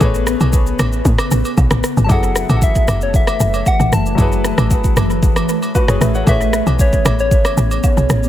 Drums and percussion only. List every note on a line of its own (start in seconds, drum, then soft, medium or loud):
0.01 kick loud
0.01 high agogo medium
0.01 shaker medium
0.14 shaker medium
0.27 cross-stick medium
0.27 shaker medium
0.40 high agogo medium
0.40 shaker soft
0.53 kick loud
0.53 shaker medium
0.66 shaker medium
0.79 cross-stick loud
0.79 high agogo medium
0.79 shaker medium
0.93 shaker soft
1.05 kick loud
1.05 shaker medium
1.18 cross-stick loud
1.18 high agogo medium
1.18 shaker soft
1.31 shaker loud
1.45 high agogo medium
1.45 shaker medium
1.57 kick medium
1.57 low woodblock medium
1.57 shaker medium
1.71 cross-stick loud
1.71 shaker medium
1.84 cross-stick medium
1.84 shaker medium
1.97 shaker soft
2.09 kick loud
2.09 high agogo medium
2.09 shaker medium
2.23 shaker medium
2.36 cross-stick medium
2.36 shaker medium
2.49 high agogo medium
2.49 shaker soft
2.62 kick loud
2.62 shaker medium
2.75 kick medium
2.75 shaker medium
2.88 cross-stick loud
2.88 high agogo medium
2.88 shaker loud
3.01 shaker soft
3.14 kick loud
3.14 shaker medium
3.27 cross-stick medium
3.27 high agogo medium
3.27 shaker soft
3.40 shaker loud
3.54 high agogo medium
3.54 shaker medium
3.66 kick medium
3.66 low woodblock medium
3.66 shaker medium
3.80 shaker medium
3.92 cross-stick medium
3.92 shaker loud
4.06 shaker soft
4.18 kick loud
4.18 high agogo medium
4.18 shaker medium
4.32 shaker medium
4.44 cross-stick medium
4.44 shaker loud
4.58 cross-stick medium
4.58 high agogo medium
4.58 shaker medium
4.71 kick loud
4.71 shaker medium
4.84 kick medium
4.84 shaker medium
4.97 cross-stick loud
4.97 high agogo medium
4.97 shaker medium
5.10 shaker soft
5.23 kick loud
5.23 shaker medium
5.36 cross-stick medium
5.36 high agogo medium
5.36 shaker soft
5.49 shaker loud
5.63 high agogo medium
5.63 shaker medium
5.75 kick medium
5.75 low woodblock medium
5.75 shaker medium
5.88 cross-stick loud
5.88 shaker medium
6.01 cross-stick medium
6.01 shaker medium
6.15 shaker soft
6.27 kick loud
6.27 high agogo medium
6.27 shaker medium
6.41 shaker medium
6.53 cross-stick medium
6.53 shaker medium
6.67 high agogo medium
6.67 shaker soft
6.79 kick loud
6.79 shaker medium
6.93 kick medium
6.93 shaker medium
7.05 cross-stick loud
7.05 high agogo medium
7.05 shaker medium
7.19 shaker soft
7.31 kick loud
7.31 shaker medium
7.45 cross-stick medium
7.45 high agogo medium
7.45 shaker medium
7.57 shaker loud
7.71 high agogo medium
7.71 shaker soft
7.83 kick medium
7.83 low woodblock medium
7.83 shaker medium
7.97 shaker medium
8.10 cross-stick medium
8.10 shaker medium
8.23 shaker soft